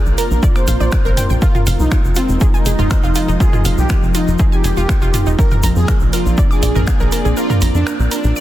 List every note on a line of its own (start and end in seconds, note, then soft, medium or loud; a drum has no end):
0.00 1.38 A#3 medium
0.00 1.41 C4 medium
0.00 1.38 D4 medium
0.00 1.38 F4 loud
0.00 8.40 F4 medium
0.00 8.40 A#4 medium
0.00 1.42 D5 medium
0.06 0.15 A#1 medium
0.06 shaker soft
0.18 0.30 A#4 medium
0.18 0.37 A#4 medium
0.18 open hi-hat loud
0.18 shaker loud
0.31 0.40 A#1 medium
0.31 shaker soft
0.43 0.49 D5 medium
0.43 kick loud
0.43 shaker medium
0.56 1.32 C5 loud
0.56 0.61 D6 medium
0.56 finger snap soft
0.56 shaker soft
0.67 0.77 A#1 medium
0.67 0.77 F5 medium
0.67 open hi-hat loud
0.67 shaker loud
0.80 0.89 A#1 medium
0.80 0.89 D5 medium
0.80 shaker soft
0.92 0.98 D5 medium
0.92 finger snap loud
0.92 kick loud
0.92 shaker medium
1.05 1.14 G#1 medium
1.05 1.11 A#4 loud
1.05 shaker soft
1.17 1.23 G5 medium
1.17 mid tom medium
1.17 open hi-hat loud
1.17 shaker loud
1.30 1.39 A#1 medium
1.30 1.39 G5 medium
1.30 shaker soft
1.42 8.40 F3 medium
1.42 5.35 G#3 loud
1.42 8.40 C4 medium
1.42 5.35 D#4 medium
1.42 1.61 F4 loud
1.42 1.52 F4 medium
1.42 kick loud
1.42 shaker medium
1.55 1.60 F4 medium
1.55 mid tom medium
1.55 shaker soft
1.67 1.76 F1 loud
1.67 1.76 F5 medium
1.67 open hi-hat loud
1.67 shaker medium
1.80 1.89 C2 medium
1.80 1.98 D#4 medium
1.80 shaker soft
1.91 2.04 F4 medium
1.91 finger snap loud
1.91 kick loud
1.91 shaker medium
2.04 2.13 F1 medium
2.04 shaker soft
2.15 2.35 C4 loud
2.15 2.29 F4 medium
2.15 5.39 D#5 medium
2.15 open hi-hat loud
2.15 shaker loud
2.29 2.38 F1 medium
2.29 shaker soft
2.40 2.47 G#4 medium
2.40 kick loud
2.40 shaker medium
2.54 3.31 D#4 loud
2.54 2.59 G#5 medium
2.54 shaker soft
2.66 2.76 F1 loud
2.66 2.76 G#4 medium
2.66 open hi-hat loud
2.66 shaker medium
2.79 2.88 F1 medium
2.79 2.84 F4 loud
2.79 mid tom medium
2.79 shaker soft
2.90 2.97 C5 medium
2.90 finger snap loud
2.90 kick loud
2.90 shaker medium
3.04 3.13 F1 medium
3.04 3.13 F4 loud
3.04 shaker soft
3.15 3.28 F4 medium
3.15 open hi-hat loud
3.15 shaker loud
3.28 3.37 F1 medium
3.28 3.37 D#4 medium
3.28 shaker soft
3.40 3.50 F4 medium
3.40 3.59 G#4 loud
3.40 kick loud
3.40 shaker medium
3.53 3.59 F4 medium
3.53 mid tom loud
3.53 shaker soft
3.65 3.75 F1 medium
3.65 3.75 F5 medium
3.65 open hi-hat loud
3.65 shaker medium
3.78 3.87 C2 medium
3.78 3.96 G4 loud
3.78 shaker soft
3.89 4.02 F4 medium
3.89 finger snap loud
3.89 kick loud
3.89 shaker medium
4.03 4.12 F1 medium
4.03 shaker soft
4.15 4.34 D#4 loud
4.15 4.27 F4 medium
4.15 open hi-hat loud
4.15 shaker medium
4.27 4.37 F1 medium
4.27 shaker soft
4.39 4.45 G#4 medium
4.39 kick loud
4.39 shaker soft
4.52 5.29 G4 loud
4.52 4.58 G#5 medium
4.52 shaker soft
4.64 4.74 F1 loud
4.64 4.74 G#4 medium
4.64 open hi-hat loud
4.64 shaker medium
4.77 4.86 F1 medium
4.77 4.82 F4 loud
4.77 shaker soft
4.89 4.95 C5 medium
4.89 finger snap loud
4.89 kick loud
4.89 shaker medium
5.02 5.11 F1 medium
5.02 5.11 F4 loud
5.02 shaker soft
5.14 5.26 F4 medium
5.14 mid tom medium
5.14 open hi-hat loud
5.14 shaker medium
5.26 5.36 F1 medium
5.26 5.36 D#4 medium
5.26 shaker soft
5.39 8.40 A#3 medium
5.39 8.40 D4 loud
5.39 5.58 A#4 loud
5.39 5.48 A#4 medium
5.39 kick loud
5.39 shaker medium
5.51 5.57 A#4 medium
5.51 mid tom loud
5.51 shaker soft
5.63 5.73 A#1 loud
5.63 5.73 A#5 medium
5.63 open hi-hat loud
5.63 shaker medium
5.76 5.85 F2 medium
5.76 5.95 G#4 loud
5.76 shaker soft
5.88 6.00 A#4 medium
5.88 finger snap loud
5.88 kick loud
5.88 shaker medium
6.00 6.10 A#1 medium
6.00 8.40 D5 medium
6.00 shaker soft
6.13 6.32 F4 loud
6.13 6.25 A#4 medium
6.13 open hi-hat loud
6.13 shaker medium
6.26 6.35 A#1 medium
6.26 shaker soft
6.37 6.44 D5 medium
6.37 kick loud
6.37 shaker soft
6.51 7.27 G#4 loud
6.51 6.56 D6 medium
6.51 shaker soft
6.63 6.72 A#1 loud
6.63 6.72 D5 medium
6.63 open hi-hat loud
6.63 shaker medium
6.75 6.84 A#1 medium
6.75 6.81 A#4 loud
6.75 mid tom medium
6.75 shaker soft
6.87 6.93 F5 medium
6.87 finger snap loud
6.87 kick loud
6.87 shaker medium
7.00 7.09 A#1 medium
7.00 7.09 A#4 loud
7.00 shaker soft
7.12 7.24 A#4 medium
7.12 open hi-hat loud
7.12 shaker medium
7.25 7.34 A#1 medium
7.25 7.34 G#4 medium
7.25 shaker soft
7.37 7.56 F4 loud
7.37 7.47 A#4 medium
7.37 shaker medium
7.50 7.55 A#4 medium
7.50 mid tom loud
7.50 shaker soft
7.62 7.72 A#1 loud
7.62 7.71 A#5 medium
7.62 open hi-hat loud
7.62 shaker medium
7.75 7.84 F2 medium
7.75 7.93 D4 loud
7.75 shaker soft
7.87 7.99 A#4 medium
7.87 finger snap loud
7.87 shaker medium
7.99 8.08 A#1 medium
7.99 shaker soft
8.11 8.30 D4 loud
8.11 8.24 A#4 medium
8.11 open hi-hat loud
8.11 shaker medium
8.24 8.33 A#1 medium
8.24 shaker soft
8.36 8.40 D5 medium
8.36 shaker medium